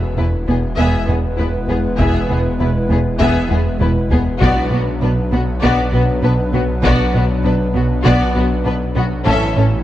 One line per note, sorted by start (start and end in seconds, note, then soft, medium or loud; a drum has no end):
0.00 4.43 E1 medium
0.00 4.41 G#3 medium
0.00 4.39 B3 medium
0.00 4.41 E4 medium
0.00 4.39 B4 medium
0.16 0.24 E1 soft
0.16 0.25 E2 soft
0.16 0.36 E2 medium
0.16 0.25 B3 soft
0.16 0.25 E4 soft
0.16 0.27 B4 soft
0.47 0.55 E1 soft
0.47 0.66 E2 soft
0.47 0.56 E2 soft
0.47 0.56 B3 soft
0.47 0.57 G#4 soft
0.77 0.85 E1 medium
0.77 0.96 E2 medium
0.77 0.86 E2 medium
0.77 1.06 B3 medium
0.77 1.06 G#4 medium
0.77 1.06 E5 medium
1.08 1.16 E1 soft
1.08 1.26 E2 medium
1.08 1.17 E2 soft
1.08 1.16 B3 soft
1.08 1.16 G#4 soft
1.38 1.46 E1 soft
1.38 1.57 E2 medium
1.38 1.47 E2 soft
1.38 1.47 B3 soft
1.38 1.46 E4 soft
1.38 1.47 B4 soft
1.68 1.76 E1 soft
1.68 1.77 E2 soft
1.68 1.87 E2 medium
1.68 1.77 B3 medium
1.68 1.77 B3 soft
1.68 1.78 G#4 soft
1.99 2.07 E1 medium
1.99 2.07 E2 medium
1.99 2.17 E2 medium
1.99 2.28 B3 soft
1.99 2.27 G#4 medium
1.99 2.27 E5 soft
1.99 taiko medium
2.30 2.38 E1 soft
2.30 2.48 E2 medium
2.30 2.38 E2 soft
2.30 2.38 B3 soft
2.30 2.39 B3 soft
2.30 2.38 G#4 soft
2.60 2.68 E1 soft
2.60 2.68 E2 soft
2.60 2.78 E2 soft
2.60 2.69 B3 soft
2.60 2.68 E4 soft
2.60 2.68 B4 soft
2.90 2.98 E1 soft
2.90 3.08 E2 medium
2.90 2.98 E2 soft
2.90 2.99 B3 soft
2.90 2.98 G#4 soft
3.19 3.28 E1 medium
3.19 3.38 E2 medium
3.19 3.28 E2 medium
3.19 3.49 B3 medium
3.19 3.49 G#4 medium
3.19 3.48 E5 medium
3.19 taiko medium
3.50 3.58 E1 soft
3.50 3.69 E2 medium
3.50 3.59 E2 soft
3.50 3.58 B3 soft
3.50 3.60 B3 soft
3.50 3.58 G#4 soft
3.50 taiko high medium
3.80 3.89 E1 soft
3.80 3.99 E2 medium
3.80 3.89 E2 soft
3.80 3.89 B3 soft
3.80 3.89 E4 soft
3.80 3.89 B4 soft
3.80 taiko mid medium
4.10 4.19 E1 soft
4.10 4.29 E2 medium
4.10 4.19 E2 soft
4.10 4.20 B3 soft
4.10 4.20 B3 medium
4.10 4.20 G#4 medium
4.10 taiko low medium
4.40 4.49 B1 medium
4.40 9.28 B1 medium
4.40 4.59 B2 medium
4.40 4.49 B2 medium
4.40 9.26 F#3 medium
4.40 9.22 B3 medium
4.40 4.70 B3 medium
4.40 9.26 D4 medium
4.40 4.69 F#4 medium
4.40 9.21 B4 medium
4.40 4.70 D5 medium
4.40 taiko medium
4.71 4.80 B1 medium
4.71 4.89 B2 medium
4.71 4.80 B2 soft
4.71 4.80 B3 soft
4.71 4.80 F#4 soft
5.01 5.09 B1 medium
5.01 5.10 B2 medium
5.01 5.21 B2 medium
5.01 5.11 B3 soft
5.01 5.10 D4 soft
5.01 5.10 B4 soft
5.31 5.39 B1 soft
5.31 5.50 B2 medium
5.31 5.40 B2 medium
5.31 5.40 B3 soft
5.31 5.41 F#4 medium
5.62 5.70 B1 medium
5.62 5.70 B2 medium
5.62 5.81 B2 medium
5.62 5.91 B3 medium
5.62 5.91 F#4 medium
5.62 5.91 D5 medium
5.62 taiko medium
5.92 6.00 B1 soft
5.92 6.00 B2 medium
5.92 6.11 B2 medium
5.92 6.01 B3 medium
5.92 6.02 B3 medium
5.92 6.02 F#4 soft
6.22 6.31 B1 soft
6.22 6.41 B2 medium
6.22 6.31 B2 soft
6.22 6.32 B3 medium
6.22 6.32 D4 medium
6.22 6.32 B4 medium
6.53 6.61 B1 medium
6.53 6.61 B2 medium
6.53 6.71 B2 medium
6.53 6.61 B3 medium
6.53 6.62 B3 medium
6.53 6.62 F#4 medium
6.83 6.91 B1 medium
6.83 6.91 B2 medium
6.83 7.01 B2 medium
6.83 7.12 B3 medium
6.83 7.12 F#4 medium
6.83 7.12 D5 medium
6.83 taiko medium
7.14 7.22 B1 medium
7.14 7.22 B2 medium
7.14 7.33 B2 medium
7.14 7.22 B3 medium
7.14 7.22 B3 soft
7.14 7.24 F#4 soft
7.44 7.52 B1 medium
7.44 7.52 B2 medium
7.44 7.63 B2 medium
7.44 7.52 B3 soft
7.44 7.53 D4 medium
7.44 7.53 B4 medium
7.74 7.82 B1 medium
7.74 7.82 B2 medium
7.74 7.93 B2 medium
7.74 7.82 B3 medium
7.74 7.82 B3 soft
7.74 7.84 F#4 medium
8.04 8.13 B1 medium
8.04 8.12 B2 medium
8.04 8.24 B2 medium
8.04 8.33 B3 medium
8.04 8.33 F#4 medium
8.04 8.34 D5 medium
8.04 taiko medium
8.35 8.43 B1 medium
8.35 8.43 B2 medium
8.35 8.54 B2 medium
8.35 8.43 B3 medium
8.35 8.45 F#4 soft
8.64 8.74 B1 medium
8.64 8.73 B2 medium
8.64 8.84 B2 medium
8.64 8.73 B3 medium
8.64 8.72 D4 medium
8.64 8.74 B4 medium
8.95 9.04 B1 medium
8.95 9.04 B2 medium
8.95 9.14 B2 medium
8.95 9.03 B3 medium
8.95 9.04 F#4 medium
9.26 9.83 A1 medium
9.26 9.34 A1 medium
9.26 9.44 A2 medium
9.26 9.34 A2 medium
9.26 9.83 E3 medium
9.26 9.83 A3 medium
9.26 9.54 C#4 medium
9.26 9.83 E4 medium
9.26 9.55 A4 medium
9.26 9.83 C#5 medium
9.26 9.56 E5 medium
9.26 taiko medium
9.56 9.64 A1 medium
9.56 9.64 A2 medium
9.56 9.75 A2 medium
9.56 9.64 C#4 soft
9.56 9.66 C#4 soft
9.56 9.66 A4 soft